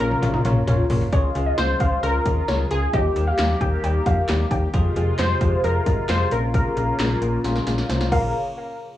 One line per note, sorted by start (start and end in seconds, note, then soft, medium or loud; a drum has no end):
0.00 0.16 A#1 loud
0.00 1.11 C#3 medium
0.00 0.16 A#3 medium
0.00 1.11 A#3 medium
0.00 0.14 C#4 medium
0.00 0.16 C#4 medium
0.00 0.16 F4 medium
0.00 1.09 F4 medium
0.00 0.16 A#4 medium
0.00 0.86 A#4 medium
0.00 0.16 C#5 medium
0.00 closed hi-hat medium
0.11 mid tom medium
0.22 0.38 A#1 loud
0.22 0.39 A#3 medium
0.22 0.39 C#4 medium
0.22 0.30 F4 medium
0.22 0.39 F4 medium
0.22 0.39 A#4 medium
0.22 0.39 C#5 medium
0.22 closed hi-hat medium
0.22 mid tom medium
0.34 0.41 D#4 medium
0.34 mid tom medium
0.45 0.61 A#1 loud
0.45 0.62 A#3 loud
0.45 0.62 C#4 medium
0.45 0.59 F4 medium
0.45 0.62 F4 medium
0.45 0.62 A#4 medium
0.45 0.62 C#5 loud
0.45 closed hi-hat medium
0.45 mid tom loud
0.67 0.84 A#1 loud
0.67 0.84 A#3 loud
0.67 0.84 C#4 loud
0.67 0.82 F4 medium
0.67 0.84 F4 loud
0.67 0.84 A#4 loud
0.67 0.84 C#5 loud
0.67 closed hi-hat medium
0.67 floor tom loud
0.90 1.06 A#1 loud
0.90 1.07 A#3 medium
0.90 1.07 C#4 medium
0.90 1.07 F4 medium
0.90 1.07 A#4 medium
0.90 1.07 C#5 loud
0.90 floor tom loud
0.90 open hi-hat medium
1.02 floor tom loud
1.12 1.29 C#2 loud
1.12 2.91 C#3 medium
1.12 2.91 G#3 medium
1.12 1.29 G#3 loud
1.12 1.29 C#4 loud
1.12 2.91 F4 medium
1.12 1.29 F4 loud
1.12 1.29 G#4 loud
1.12 1.25 C#5 loud
1.12 kick loud
1.12 closed hi-hat medium
1.35 1.51 C#2 loud
1.35 1.52 G#3 medium
1.35 1.52 C#4 medium
1.35 1.52 F4 medium
1.35 1.52 G#4 loud
1.35 closed hi-hat medium
1.46 1.59 D#5 medium
1.58 1.74 C#2 loud
1.58 1.74 G#3 medium
1.58 1.74 C#4 medium
1.58 1.74 F4 medium
1.58 1.74 G#4 medium
1.58 2.04 C5 loud
1.58 snare loud
1.58 closed hi-hat medium
1.80 1.96 C#2 loud
1.80 1.97 G#3 medium
1.80 1.97 C#4 medium
1.80 1.97 F4 medium
1.80 1.97 G#4 medium
1.80 1.87 F5 medium
1.80 kick medium
1.80 closed hi-hat medium
2.03 2.19 C#2 loud
2.03 2.19 G#3 loud
2.03 2.19 C#4 medium
2.03 2.19 F4 medium
2.03 2.20 A#4 loud
2.03 2.73 A#4 loud
2.03 closed hi-hat medium
2.25 2.41 D#2 medium
2.25 2.42 G#3 medium
2.25 2.42 C#4 medium
2.25 2.42 F4 medium
2.25 2.42 G#4 medium
2.25 kick medium
2.25 closed hi-hat medium
2.48 2.64 C#2 loud
2.48 2.65 G#3 loud
2.48 2.65 C#4 medium
2.48 2.65 F4 medium
2.48 2.65 G#4 loud
2.48 2.80 C#5 medium
2.48 snare loud
2.48 closed hi-hat medium
2.71 2.86 C#2 loud
2.71 2.87 G#3 medium
2.71 2.87 C#4 medium
2.71 2.87 F4 medium
2.71 2.87 G#4 medium
2.71 2.94 G#4 medium
2.71 closed hi-hat medium
2.93 3.09 D#2 loud
2.93 4.72 D#3 medium
2.93 3.10 G3 medium
2.93 4.72 A#3 medium
2.93 3.10 A#3 medium
2.93 3.10 D#4 medium
2.93 4.72 G4 medium
2.93 3.10 G4 loud
2.93 3.80 G4 medium
2.93 3.06 D#5 medium
2.93 kick loud
2.93 closed hi-hat medium
3.16 3.32 D#2 loud
3.16 3.32 G3 medium
3.16 3.32 A#3 medium
3.16 3.32 D#4 medium
3.16 3.32 G4 medium
3.16 closed hi-hat medium
3.27 3.40 F5 medium
3.38 3.54 D#2 loud
3.38 3.55 G3 medium
3.38 3.55 A#3 medium
3.38 3.55 D#4 medium
3.38 3.55 G4 medium
3.38 snare loud
3.38 clap medium
3.38 closed hi-hat medium
3.61 3.77 D#2 loud
3.61 3.77 G3 medium
3.61 3.77 A#3 medium
3.61 3.77 D#4 medium
3.61 3.77 G4 medium
3.61 3.67 G5 medium
3.61 kick medium
3.61 closed hi-hat medium
3.83 3.99 D#2 loud
3.83 4.00 G3 loud
3.83 4.00 A#3 loud
3.83 4.00 D#4 loud
3.83 4.00 G4 loud
3.83 3.96 G5 loud
3.83 closed hi-hat medium
4.06 4.22 F2 loud
4.06 4.23 G3 medium
4.06 4.23 A#3 medium
4.06 4.23 D#4 medium
4.06 4.23 G4 loud
4.06 4.12 F5 medium
4.06 kick medium
4.06 closed hi-hat medium
4.29 4.44 D#2 loud
4.29 4.45 G3 loud
4.29 4.45 A#3 loud
4.29 4.45 D#4 loud
4.29 4.45 G4 loud
4.29 snare loud
4.29 clap medium
4.29 closed hi-hat medium
4.51 4.67 D#2 loud
4.51 4.68 G3 medium
4.51 4.68 A#3 medium
4.51 4.68 D#4 medium
4.51 4.68 G4 loud
4.51 4.57 G5 medium
4.51 kick medium
4.51 closed hi-hat medium
4.73 4.89 F2 loud
4.73 6.30 C3 medium
4.73 6.30 G#3 medium
4.73 4.90 G#3 loud
4.73 4.90 C4 loud
4.73 8.09 F4 medium
4.73 4.90 F4 loud
4.73 4.90 G#4 loud
4.73 kick loud
4.73 closed hi-hat medium
4.96 5.12 F2 loud
4.96 5.13 G#3 medium
4.96 5.13 C4 medium
4.96 5.13 F4 medium
4.96 5.13 G#4 loud
4.96 closed hi-hat medium
5.19 5.34 F2 loud
5.19 5.35 G#3 medium
5.19 5.35 C4 medium
5.19 5.35 F4 medium
5.19 5.35 G#4 medium
5.19 5.65 C5 loud
5.19 snare loud
5.19 clap loud
5.19 closed hi-hat medium
5.41 5.57 F2 loud
5.41 5.58 G#3 medium
5.41 5.58 C4 medium
5.41 5.58 F4 medium
5.41 5.58 G4 medium
5.41 kick loud
5.41 closed hi-hat medium
5.64 5.80 F2 loud
5.64 5.80 G#3 loud
5.64 5.80 C4 medium
5.64 5.80 F4 medium
5.64 5.80 G#4 loud
5.64 6.06 A#4 loud
5.64 closed hi-hat medium
5.86 6.02 G2 medium
5.86 6.03 G#3 medium
5.86 6.03 C4 medium
5.86 6.03 F4 medium
5.86 6.03 G#4 medium
5.86 kick loud
5.86 closed hi-hat medium
6.09 6.25 F2 medium
6.09 6.25 G#3 medium
6.09 6.26 C4 medium
6.09 6.26 F4 medium
6.09 6.26 G#4 loud
6.09 6.33 C5 loud
6.09 snare loud
6.09 clap medium
6.09 closed hi-hat medium
6.31 6.63 A#1 loud
6.31 8.10 C#3 medium
6.31 8.10 A#3 medium
6.31 6.68 A#3 medium
6.31 6.68 C#4 medium
6.31 6.68 F4 medium
6.31 6.68 A#4 medium
6.31 6.42 A#4 medium
6.31 closed hi-hat medium
6.54 7.86 A#4 loud
6.54 kick loud
6.54 closed hi-hat medium
6.77 6.93 A#1 loud
6.77 6.93 A#3 medium
6.77 6.93 C#4 medium
6.77 6.93 F4 medium
6.77 6.93 A#4 medium
6.77 closed hi-hat medium
6.99 7.15 A#1 loud
6.99 7.16 A#3 medium
6.99 7.16 C#4 medium
6.99 7.16 F4 medium
6.99 7.16 A#4 medium
6.99 snare loud
6.99 clap medium
6.99 closed hi-hat medium
7.22 7.38 A#1 loud
7.22 7.38 A#3 medium
7.22 7.38 C#4 medium
7.22 7.38 F4 medium
7.22 7.38 A#4 loud
7.22 closed hi-hat medium
7.44 7.60 A#1 loud
7.44 7.61 A#3 loud
7.44 7.61 C#4 loud
7.44 7.61 F4 loud
7.44 7.61 A#4 loud
7.44 snare medium
7.44 closed hi-hat medium
7.56 snare medium
7.67 7.83 A#1 loud
7.67 7.84 A#3 medium
7.67 7.84 C#4 medium
7.67 7.84 F4 medium
7.67 7.84 A#4 loud
7.67 snare medium
7.67 closed hi-hat medium
7.78 snare medium
7.90 8.11 C2 loud
7.90 8.06 A#3 loud
7.90 8.06 C#4 loud
7.90 8.06 F4 loud
7.90 8.06 C5 loud
7.90 snare medium
7.90 closed hi-hat medium
8.01 snare medium
8.12 8.33 A#1 loud
8.12 8.33 C#3 medium
8.12 8.33 A#3 medium
8.12 8.33 C#4 medium
8.12 8.33 F4 medium
8.12 8.33 A#4 medium
8.12 8.33 F5 medium
8.12 kick loud
8.12 crash medium